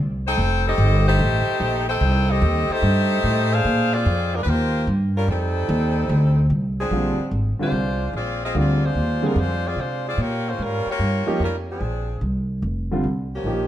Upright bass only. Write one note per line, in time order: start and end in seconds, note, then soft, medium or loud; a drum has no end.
0.00 0.36 C2 medium
0.37 0.77 F1 medium
0.78 1.18 G1 loud
1.19 1.45 A1 loud
1.47 muted upright bass stroke soft
1.60 2.00 A#1 medium
2.01 2.41 C2 loud
2.42 2.68 D#2 loud
2.69 muted upright bass stroke soft
2.82 3.22 G2 loud
3.24 3.63 A2 medium
3.65 4.04 A#2 medium
4.06 4.45 F2 loud
4.46 4.86 D#2 loud
4.87 5.27 G2 medium
5.28 5.68 F2 medium
5.69 6.08 D#2 loud
6.09 6.49 D2 loud
6.50 6.90 C2 medium
6.91 7.16 A#1 medium
7.19 muted upright bass stroke soft
7.31 7.57 G#1 medium
7.59 muted upright bass stroke soft
7.72 8.12 C2 medium
8.13 8.53 A#1 medium
8.55 8.94 D2 medium
8.95 9.35 D#2 medium
9.36 9.76 F2 medium
9.76 10.17 C3 medium
10.18 10.58 A#2 medium
10.59 10.84 G#2 medium
10.86 muted upright bass stroke soft
10.99 11.25 G2 medium
11.27 muted upright bass stroke soft
11.40 11.80 F2 medium
11.80 12.21 A#1 medium
12.21 12.62 C2 medium
12.62 13.03 F1 medium
13.04 13.43 C2 medium
13.44 13.67 A#1 medium